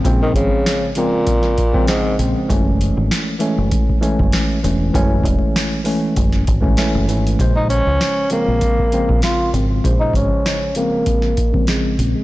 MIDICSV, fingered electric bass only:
0, 0, Header, 1, 2, 480
1, 0, Start_track
1, 0, Tempo, 612245
1, 34, Time_signature, 4, 2, 24, 8
1, 9595, End_track
2, 0, Start_track
2, 0, Title_t, "Fingered electric bass"
2, 0, Program_c, 0, 33
2, 38, Note_on_c, 0, 34, 110
2, 241, Note_off_c, 0, 34, 0
2, 268, Note_on_c, 0, 32, 92
2, 382, Note_off_c, 0, 32, 0
2, 1718, Note_on_c, 0, 34, 91
2, 1828, Note_off_c, 0, 34, 0
2, 1958, Note_on_c, 0, 30, 111
2, 2272, Note_off_c, 0, 30, 0
2, 2330, Note_on_c, 0, 32, 96
2, 2421, Note_off_c, 0, 32, 0
2, 2809, Note_on_c, 0, 30, 94
2, 2900, Note_off_c, 0, 30, 0
2, 3290, Note_on_c, 0, 30, 92
2, 3380, Note_off_c, 0, 30, 0
2, 3638, Note_on_c, 0, 28, 93
2, 3841, Note_off_c, 0, 28, 0
2, 3878, Note_on_c, 0, 30, 106
2, 4080, Note_off_c, 0, 30, 0
2, 4107, Note_on_c, 0, 28, 95
2, 4222, Note_off_c, 0, 28, 0
2, 4836, Note_on_c, 0, 30, 99
2, 5040, Note_off_c, 0, 30, 0
2, 5079, Note_on_c, 0, 32, 89
2, 5281, Note_off_c, 0, 32, 0
2, 5449, Note_on_c, 0, 30, 85
2, 5556, Note_off_c, 0, 30, 0
2, 5556, Note_on_c, 0, 32, 99
2, 5759, Note_off_c, 0, 32, 0
2, 5797, Note_on_c, 0, 34, 101
2, 6111, Note_off_c, 0, 34, 0
2, 6167, Note_on_c, 0, 37, 87
2, 6259, Note_off_c, 0, 37, 0
2, 6648, Note_on_c, 0, 34, 82
2, 6739, Note_off_c, 0, 34, 0
2, 7129, Note_on_c, 0, 34, 82
2, 7220, Note_off_c, 0, 34, 0
2, 7476, Note_on_c, 0, 32, 94
2, 7679, Note_off_c, 0, 32, 0
2, 7718, Note_on_c, 0, 34, 98
2, 7921, Note_off_c, 0, 34, 0
2, 7948, Note_on_c, 0, 32, 91
2, 8062, Note_off_c, 0, 32, 0
2, 9397, Note_on_c, 0, 34, 85
2, 9508, Note_off_c, 0, 34, 0
2, 9595, End_track
0, 0, End_of_file